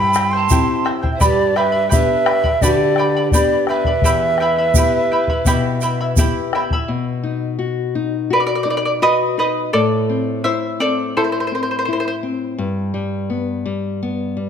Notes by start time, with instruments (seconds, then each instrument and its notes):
Already playing: nylon-string guitar G2, charango E4 G4 C5 E5 G5, pan flute G5, quena B5
0.14 charango E4 C5 E5 G5, bombo rim, shaker
0.31 charango E4 C5 G5, quena C6
0.36 pan flute A5
0.50 nylon-string guitar C4 E4 G4, charango E4 C5 E5 G5, bombo low, shaker
0.85 charango E4 C5 E5 G5, bombo rim
1.03 charango E4 C5 G5, bombo low
1.12 pan flute C5, quena E5
1.20 nylon-string guitar G2, charango G4 B4 D5 G5 B5, pan flute G4, quena D5, bombo low, shaker
1.56 charango B4 D5 G5 B5, pan flute B4, quena E5, bombo rim
1.72 charango B4 D5 B5
1.89 nylon-string guitar B3 D4 G4, charango B4 D5 G5 B5, pan flute B4, quena E5, bombo low, shaker
2.26 charango B4 D5 G5 B5, bombo rim
2.44 charango B4 D5 B5, bombo low
2.61 nylon-string guitar D3, pan flute F#4, charango G4 B4 D5 G5 B5, quena D5, bombo low, shaker
2.74 pan flute G4
2.96 charango B4 D5 G5 B5, bombo rim
3.17 charango B4 D5 B5
3.31 nylon-string guitar B3 D4 G4, pan flute G4, charango B4 D5 G5 B5, quena D5, bombo low, shaker
3.67 charango B4 D5 G5 B5, pan flute B4, quena E5, bombo rim
3.84 charango B4 D5 B5, bombo low
4.02 nylon-string guitar E2, charango E4 G4 E5 G5 B5, bombo low, shaker
4.38 charango E4 E5 G5, bombo rim
4.42 charango B5
4.58 charango E4 E5 B5
4.74 nylon-string guitar B3 E4 G4, charango E4 G5, bombo low, shaker
4.78 charango E5 B5
5.11 charango E4 E5 G5 B5
5.27 charango E4 E5 B5, bombo low
5.45 nylon-string guitar B2, charango E4 G4 E5 G5 B5, bombo low, shaker
5.81 charango E4 E5 G5 B5, shaker
6.01 charango E4 E5 B5
6.16 nylon-string guitar B3 E4 G4, charango E4 E5 G5 B5, bombo low, shaker
6.53 charango E4 E5 G5 B5, bombo rim
6.70 charango E4 E5 B5, bombo low
6.88 nylon-string guitar B2
7.23 nylon-string guitar D#4
7.59 nylon-string guitar F#4
7.95 nylon-string guitar D#4
8.30 nylon-string guitar F#4, charango B4 D5
8.40 charango D5
8.47 charango D5
8.55 charango D5
8.63 nylon-string guitar D#4, charango D5
8.70 charango D5
8.77 charango D5
8.85 charango D5
9.02 nylon-string guitar F#4, charango B4 D#5
9.38 nylon-string guitar D#4, charango B4 D#5
9.73 nylon-string guitar A2, charango A4 D5
10.10 nylon-string guitar C4
10.44 nylon-string guitar E4, charango C5 E5
10.80 nylon-string guitar C4, charango A4 D5
11.17 nylon-string guitar E4, charango A4 C5
11.24 charango C5
11.32 charango C5
11.40 charango C5
11.47 charango C5
11.52 nylon-string guitar C4, charango C5
11.63 charango C5
11.71 charango C5
11.79 charango C5
11.85 nylon-string guitar E4, charango C5
11.93 charango C5
12.00 charango C5
12.08 charango C5
12.23 nylon-string guitar C4
12.58 nylon-string guitar G2
12.94 nylon-string guitar G3
13.30 nylon-string guitar B3
13.66 nylon-string guitar G3
14.03 nylon-string guitar B3
14.37 nylon-string guitar G3